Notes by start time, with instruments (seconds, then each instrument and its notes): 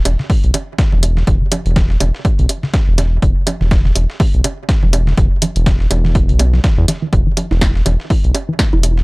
0.05 analog synth bass E1, closed hi-hat, low bongo
0.19 synth arpeggio sound D3, snare
0.30 kick, open hi-hat, low bongo
0.44 analog synth bass B1, closed hi-hat
0.54 synth arpeggio sound E3, closed hi-hat, low bongo
0.78 synth arpeggio sound D3, kick, snare, closed hi-hat, low bongo
0.92 analog synth bass E1, low conga
1.03 closed hi-hat, low bongo
1.17 synth arpeggio sound E3, snare
1.27 analog synth bass E1, kick, closed hi-hat, low bongo
1.41 synth arpeggio sound D3
1.52 closed hi-hat, low bongo, low conga
1.66 analog synth bass E1, closed hi-hat
1.76 synth arpeggio sound E3, kick, snare, closed hi-hat, low bongo
1.90 snare
2.00 analog synth bass E1, synth arpeggio sound D3, closed hi-hat, low bongo
2.14 snare
2.25 kick, closed hi-hat, low bongo
2.39 analog synth bass B1, synth arpeggio sound E3, closed hi-hat
2.49 closed hi-hat, low bongo
2.63 synth arpeggio sound D3, snare
2.74 kick, snare, closed hi-hat, low bongo
2.88 analog synth bass E1
2.98 synth arpeggio sound E3, snare, closed hi-hat, low bongo
3.22 analog synth bass E1, synth arpeggio sound D3, kick, closed hi-hat, low bongo
3.47 closed hi-hat, low bongo, low conga
3.61 analog synth bass E1, synth arpeggio sound E3, snare
3.71 kick, snare, closed hi-hat, low bongo
3.85 synth arpeggio sound D3, snare
3.96 analog synth bass E1, closed hi-hat, low bongo
4.10 snare
4.20 synth arpeggio sound E3, kick, open hi-hat, low bongo
4.34 analog synth bass B1, closed hi-hat
4.44 synth arpeggio sound D3, closed hi-hat, low bongo
4.69 kick, snare, closed hi-hat, low bongo
4.83 analog synth bass E1, synth arpeggio sound E3, low conga
4.93 closed hi-hat, low bongo
5.07 synth arpeggio sound D3, snare
5.17 analog synth bass E1, kick, closed hi-hat, low bongo
5.42 synth arpeggio sound E3, closed hi-hat, low bongo, low conga
5.56 analog synth bass E1, closed hi-hat
5.66 synth arpeggio sound D3, kick, snare, closed hi-hat, low bongo
5.80 snare
5.91 analog synth bass E1, closed hi-hat, low bongo
6.05 synth arpeggio sound E3, snare
6.15 kick, closed hi-hat, low bongo
6.29 analog synth bass B1, synth arpeggio sound D3, closed hi-hat
6.39 synth arpeggio sound B3, closed hi-hat, low bongo
6.54 synth arpeggio sound F#3, snare
6.64 synth arpeggio sound E3, kick, snare, closed hi-hat, low bongo
6.78 analog synth bass E2
6.88 synth arpeggio sound E3, snare, closed hi-hat, low bongo
7.02 synth arpeggio sound E3
7.13 analog synth bass E1, kick, closed hi-hat, low bongo
7.27 synth arpeggio sound E3
7.37 closed hi-hat, low bongo, low conga
7.51 analog synth bass E1, synth arpeggio sound E4, snare
7.61 kick, snare, closed hi-hat, low bongo
7.75 snare
7.86 analog synth bass E1, synth arpeggio sound E3, closed hi-hat, low bongo
8.00 snare
8.10 synth arpeggio sound E4, kick, open hi-hat, low bongo
8.24 analog synth bass B1, closed hi-hat
8.35 closed hi-hat, low bongo
8.49 synth arpeggio sound E3
8.59 kick, snare, closed hi-hat, low bongo
8.73 analog synth bass E1, synth arpeggio sound E4, low conga
8.83 closed hi-hat, low bongo
8.97 snare